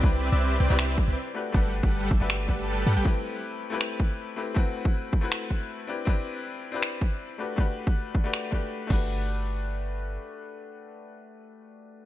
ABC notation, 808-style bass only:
X:1
M:4/4
L:1/16
Q:"Swing 16ths" 1/4=159
K:G
V:1 name="808-style bass" clef=bass
C,,3 C,,3 C,, C,,4 C,, z4 | G,,,3 G,,,3 G,,, G,,,3 G,,,4 G,, A,,, | z16 | z16 |
z16 | z12 z2 G,,,2- | G,,,12 z4 | z16 |]